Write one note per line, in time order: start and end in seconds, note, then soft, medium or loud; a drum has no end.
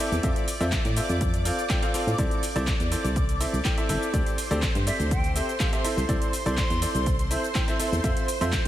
0.00 0.20 C4 medium
0.00 0.20 E4 medium
0.00 0.20 A4 medium
0.00 4.15 D5 medium
0.00 0.20 E5 loud
0.00 4.15 D6 medium
0.12 0.19 E2 medium
0.12 shaker soft
0.23 0.32 F2 loud
0.23 0.46 C4 loud
0.23 0.46 F4 medium
0.23 0.46 A4 medium
0.23 0.46 E5 loud
0.23 kick loud
0.23 closed hi-hat medium
0.23 shaker soft
0.36 closed hi-hat medium
0.36 shaker soft
0.48 open hi-hat loud
0.48 shaker medium
0.61 0.76 F2 loud
0.61 0.74 C4 loud
0.61 0.74 F4 medium
0.61 0.74 A4 medium
0.61 0.74 E5 loud
0.61 shaker soft
0.72 kick loud
0.72 clap loud
0.72 closed hi-hat medium
0.72 shaker soft
0.85 1.00 A2 loud
0.85 closed hi-hat medium
0.85 shaker soft
0.97 1.43 C4 medium
0.97 1.43 F4 medium
0.97 1.43 A4 medium
0.97 1.43 E5 medium
0.97 open hi-hat loud
0.97 shaker medium
1.09 1.51 F2 medium
1.09 closed hi-hat soft
1.09 shaker soft
1.21 kick loud
1.21 closed hi-hat medium
1.21 shaker soft
1.34 closed hi-hat medium
1.34 shaker soft
1.45 1.60 C4 medium
1.45 1.60 F4 medium
1.45 1.60 A4 medium
1.45 1.60 F5 medium
1.45 open hi-hat loud
1.45 shaker medium
1.59 shaker soft
1.69 1.81 C4 medium
1.69 1.81 F4 medium
1.69 1.81 A4 medium
1.69 1.81 G5 medium
1.69 kick loud
1.69 clap loud
1.69 closed hi-hat medium
1.69 shaker soft
1.83 1.92 C4 medium
1.83 1.92 F4 medium
1.83 1.92 A4 medium
1.83 1.92 F5 loud
1.83 closed hi-hat medium
1.83 shaker soft
1.94 2.15 C4 medium
1.94 2.15 F4 medium
1.94 2.15 A4 medium
1.94 2.15 F5 loud
1.94 open hi-hat loud
1.94 shaker medium
2.07 2.14 A2 medium
2.07 shaker soft
2.18 2.27 C2 loud
2.18 2.41 C4 loud
2.18 2.41 E4 medium
2.18 2.41 A4 medium
2.18 2.41 D5 loud
2.18 kick loud
2.18 closed hi-hat medium
2.18 shaker soft
2.31 closed hi-hat soft
2.31 shaker soft
2.43 open hi-hat loud
2.43 shaker medium
2.56 2.71 C2 loud
2.56 2.69 C4 loud
2.56 2.69 E4 medium
2.56 2.69 A4 medium
2.56 2.69 D5 loud
2.56 closed hi-hat soft
2.56 shaker soft
2.67 kick loud
2.67 clap loud
2.67 closed hi-hat medium
2.67 shaker soft
2.80 2.95 E2 medium
2.80 closed hi-hat soft
2.80 shaker soft
2.92 3.38 C4 medium
2.92 3.38 E4 medium
2.92 3.38 A4 medium
2.92 3.38 D5 medium
2.92 open hi-hat loud
2.92 shaker medium
3.04 3.46 C2 medium
3.04 closed hi-hat soft
3.04 shaker soft
3.16 kick loud
3.16 closed hi-hat medium
3.16 shaker soft
3.29 closed hi-hat medium
3.29 shaker soft
3.40 3.55 C4 medium
3.40 3.55 E4 medium
3.40 3.55 A4 medium
3.40 3.55 E5 medium
3.40 open hi-hat loud
3.40 shaker medium
3.53 3.61 C2 medium
3.53 shaker soft
3.65 3.76 C4 medium
3.65 3.76 E4 medium
3.65 3.76 A4 medium
3.65 3.76 G5 medium
3.65 kick loud
3.65 clap loud
3.65 closed hi-hat medium
3.65 shaker soft
3.78 3.88 C4 medium
3.78 3.88 E4 medium
3.78 3.88 A4 medium
3.78 3.88 E5 loud
3.78 closed hi-hat soft
3.78 shaker soft
3.89 3.97 G1 medium
3.89 4.10 C4 medium
3.89 4.10 E4 medium
3.89 4.10 A4 medium
3.89 4.10 E5 loud
3.89 open hi-hat loud
3.89 shaker medium
4.03 shaker soft
4.14 4.22 D2 loud
4.14 4.36 C4 loud
4.14 4.36 G4 medium
4.14 4.36 A4 medium
4.14 8.68 C5 medium
4.14 4.36 D5 loud
4.14 8.68 C6 medium
4.14 kick loud
4.14 closed hi-hat medium
4.14 shaker soft
4.26 closed hi-hat soft
4.26 shaker soft
4.38 open hi-hat loud
4.38 shaker medium
4.51 4.66 D2 loud
4.51 4.64 C4 loud
4.51 4.64 G4 medium
4.51 4.64 A4 medium
4.51 4.64 D5 loud
4.51 closed hi-hat soft
4.51 shaker soft
4.62 kick loud
4.62 clap loud
4.62 closed hi-hat medium
4.62 shaker soft
4.75 4.90 G2 medium
4.75 closed hi-hat soft
4.75 shaker soft
4.87 5.33 C4 medium
4.87 5.33 G4 medium
4.87 5.33 A4 medium
4.87 5.33 D5 medium
4.87 4.97 E5 medium
4.87 open hi-hat loud
4.87 shaker medium
5.00 5.41 D2 medium
5.00 closed hi-hat soft
5.00 shaker soft
5.11 5.31 G5 medium
5.11 kick loud
5.11 closed hi-hat medium
5.11 shaker soft
5.24 closed hi-hat soft
5.24 shaker soft
5.36 5.50 C4 medium
5.36 5.50 G4 medium
5.36 5.50 A4 medium
5.36 5.50 E5 medium
5.36 open hi-hat loud
5.36 shaker medium
5.49 shaker soft
5.60 5.71 C4 medium
5.60 5.71 G4 medium
5.60 5.71 A4 medium
5.60 5.71 F5 medium
5.60 kick loud
5.60 clap loud
5.60 closed hi-hat medium
5.60 shaker soft
5.73 5.83 C4 medium
5.73 5.83 G4 medium
5.73 5.83 A4 medium
5.73 5.83 E5 medium
5.73 closed hi-hat medium
5.73 shaker soft
5.84 6.05 C4 medium
5.84 6.05 E4 medium
5.84 6.05 A4 medium
5.84 6.05 E5 loud
5.84 open hi-hat loud
5.84 shaker medium
5.97 6.05 C2 medium
5.97 shaker soft
6.09 6.17 C2 loud
6.09 6.31 C4 loud
6.09 6.31 E4 medium
6.09 6.31 A4 medium
6.09 6.31 D5 loud
6.09 kick loud
6.09 closed hi-hat medium
6.09 shaker soft
6.22 closed hi-hat medium
6.22 shaker soft
6.33 open hi-hat loud
6.33 shaker medium
6.46 6.61 C2 loud
6.46 6.59 C4 medium
6.46 6.59 E4 medium
6.46 6.59 A4 medium
6.46 6.59 D5 loud
6.46 7.14 C6 medium
6.46 closed hi-hat soft
6.46 shaker soft
6.57 kick loud
6.57 clap loud
6.57 closed hi-hat medium
6.57 shaker soft
6.70 6.85 E2 loud
6.70 closed hi-hat medium
6.70 shaker soft
6.82 7.28 C4 medium
6.82 7.28 E4 medium
6.82 7.28 A4 medium
6.82 7.28 D5 medium
6.82 open hi-hat loud
6.82 shaker medium
6.95 7.36 C2 medium
6.95 closed hi-hat soft
6.95 shaker soft
7.06 kick loud
7.06 closed hi-hat medium
7.06 shaker soft
7.19 closed hi-hat medium
7.19 shaker soft
7.31 7.45 C4 medium
7.31 7.45 E4 medium
7.31 7.45 A4 medium
7.31 7.45 E5 medium
7.31 open hi-hat loud
7.31 shaker medium
7.44 shaker soft
7.55 7.66 C4 medium
7.55 7.66 E4 medium
7.55 7.66 A4 medium
7.55 7.66 G5 medium
7.55 kick loud
7.55 clap loud
7.55 closed hi-hat medium
7.55 shaker soft
7.68 7.78 C4 medium
7.68 7.78 E4 medium
7.68 7.78 A4 medium
7.68 7.78 E5 medium
7.68 closed hi-hat medium
7.68 shaker soft
7.79 8.00 C4 medium
7.79 8.00 E4 medium
7.79 8.00 A4 medium
7.79 8.00 E5 loud
7.79 open hi-hat loud
7.79 shaker medium
7.92 8.00 E2 medium
7.92 shaker soft
8.04 8.12 F2 loud
8.04 8.26 C4 loud
8.04 8.26 F4 medium
8.04 8.26 A4 medium
8.04 8.26 E5 loud
8.04 kick loud
8.04 closed hi-hat medium
8.04 shaker soft
8.17 closed hi-hat medium
8.17 shaker soft
8.28 open hi-hat loud
8.28 shaker medium
8.41 8.56 F2 loud
8.41 8.54 C4 loud
8.41 8.54 F4 medium
8.41 8.54 A4 medium
8.41 8.54 E5 loud
8.41 closed hi-hat soft
8.41 shaker soft
8.52 kick loud
8.52 clap loud
8.52 closed hi-hat medium
8.52 shaker soft